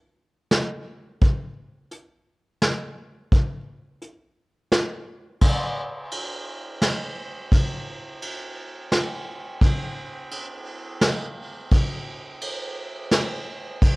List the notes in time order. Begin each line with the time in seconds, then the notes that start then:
0.51 snare, closed hi-hat
1.21 kick, closed hi-hat
1.91 closed hi-hat
2.62 snare, closed hi-hat
3.32 kick, closed hi-hat
4.02 closed hi-hat
4.72 snare, closed hi-hat
5.41 kick, crash
6.12 ride
6.82 snare, ride
7.52 kick, ride
8.22 ride
8.92 snare, ride
9.61 kick, ride
10.31 ride
11.01 snare, ride
11.71 kick, ride
12.42 ride
13.12 snare, ride
13.82 kick, ride